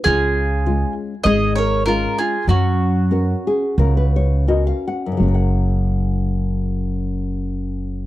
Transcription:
0.04 upright bass C#2, nylon-string guitar C#3, mandolin F4 G#4
0.66 nylon-string guitar G#3 C#4 F4
1.24 upright bass G#1, nylon-string guitar G#3, mandolin G#4 D#5
1.56 mandolin A#4 C#5
1.86 nylon-string guitar G#3 C#4 F4, mandolin F4 A#4
2.18 mandolin F4 G#4
2.47 upright bass F#2, nylon-string guitar F#3, mandolin C#4 F#4
3.11 nylon-string guitar C#4 F#4 A#4
3.47 nylon-string guitar G#4
3.78 upright bass C#2, nylon-string guitar C#3 A#4
3.97 nylon-string guitar B4
4.16 nylon-string guitar C#5
4.48 nylon-string guitar C#4 F#4 A#4 D#5
4.67 nylon-string guitar F5
4.88 nylon-string guitar F#5
5.06 nylon-string guitar F#2
5.12 nylon-string guitar C#3
5.17 upright bass F#1, nylon-string guitar F#3
5.23 nylon-string guitar C#4
5.28 nylon-string guitar A#4
5.34 nylon-string guitar F#5

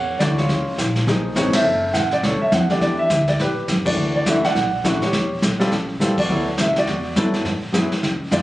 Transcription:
Already playing: upright bass E2, grand piano C#5 F#5
0.19 upright bass D2, grand piano E3 A3 D4 F#4 D5, kick, snare, hi-hat pedal
0.38 grand piano F4 C#5, snare
0.49 upright bass C#2, brush sweep, kick, snare
0.78 upright bass A#1, kick, snare, hi-hat pedal
0.96 snare
1.07 upright bass B1, grand piano F3 A#3 D#4 G#4, brush sweep, kick, snare
1.36 upright bass G#1, grand piano F3 A#3 D#4 G#4 C#5, kick, snare, hi-hat pedal
1.53 grand piano E5, snare, ride
1.57 grand piano A4
1.64 upright bass F#1, brush sweep
1.94 upright bass A1, grand piano F#5, kick, snare, hi-hat pedal
2.11 grand piano D5, snare
2.23 upright bass C#2, grand piano A4 C#5, brush sweep, kick, snare
2.41 grand piano E5, muted upright bass stroke
2.52 upright bass F2, grand piano F#5, kick, snare, hi-hat pedal
2.61 upright bass E2
2.69 upright bass C#2, grand piano E3 A3 D4 G4 D5, snare
2.81 upright bass E2, grand piano G4 D5, brush sweep, kick, snare
2.99 grand piano E5
3.10 upright bass D2, kick, snare, hi-hat pedal
3.28 grand piano D5, snare
3.39 upright bass A2, grand piano G4 B4, brush sweep, kick, snare
3.68 upright bass F#2, kick, snare, hi-hat pedal
3.85 grand piano E3 A3 D4 F#4 D5, kick, crash
3.97 upright bass D2, brush sweep
4.16 grand piano D5
4.26 upright bass C#2, grand piano E3 A3 D4 F#4 E5, kick, snare, hi-hat pedal
4.44 grand piano D5 F#5, snare
4.55 upright bass B1, brush sweep, kick, snare
4.84 upright bass A1, grand piano E3 A3 D4 F#4, kick, snare, hi-hat pedal
5.02 grand piano G4 C#5, muted upright bass stroke, snare
5.13 upright bass E1, brush sweep, kick, snare
5.42 upright bass B1, kick, snare, hi-hat pedal
5.60 grand piano G3 C4 F4 A4, snare
5.71 upright bass A1, brush sweep, kick, snare
6.00 upright bass C2, grand piano G3 C4 F4 A4, kick, snare, hi-hat pedal
6.18 grand piano F#4 D5, kick, crash
6.29 upright bass D2, grand piano F#3 B3 E4 A4, brush sweep
6.58 upright bass C#2, grand piano E5, kick, snare, hi-hat pedal
6.76 grand piano F#4 D5, snare
6.87 upright bass E2, brush sweep, kick, snare
7.16 upright bass G2, grand piano F#3 B3 E4 A4, kick, snare, hi-hat pedal
7.34 snare
7.45 upright bass G#2, brush sweep, kick, snare
7.62 muted upright bass stroke
7.72 upright bass F#2, grand piano F#3 B3 E4 G#4, kick, snare, hi-hat pedal
7.92 snare
8.03 upright bass C#2, brush sweep, kick, snare
8.31 upright bass F2, grand piano G#3 B3 D4 F4 D5, kick, snare, hi-hat pedal

